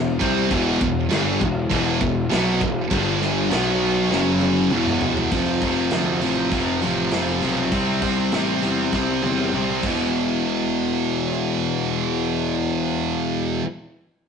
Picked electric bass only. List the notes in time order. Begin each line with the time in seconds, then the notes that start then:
Already playing: E1
0.21 C2
0.51 E1
0.81 E1
1.12 G1
1.42 E1
1.71 E1
2.01 E1
2.32 B1
2.61 E1
2.92 G1
3.52 B1
4.13 F#1
4.73 E1
5.32 F1
5.62 F1
5.93 D2
6.23 A1
6.52 F1
6.84 A1
7.13 F1
7.43 B1
7.72 C2
8.02 C2
8.34 A1
8.64 E2
8.93 C2
9.24 E2
9.55 C2
9.83 E1